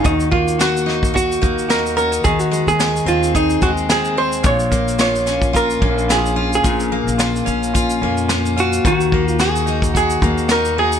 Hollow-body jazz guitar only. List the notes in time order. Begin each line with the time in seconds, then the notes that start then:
0.06 D#4
0.32 F4
0.61 F#4
1.16 F#4
1.70 A#4
1.97 A#4
2.24 G#4
2.40 F#4
2.68 G#4
3.08 F4
3.36 D#4
3.63 F#4
3.92 G#4
4.18 C5
4.46 C#5
5.01 C#5
5.56 A#4
6.12 G#4
6.55 G#4
8.60 F#4
8.87 F#4
9.27 F4
9.41 G#4
9.97 G#4
10.52 A#4
10.79 G#4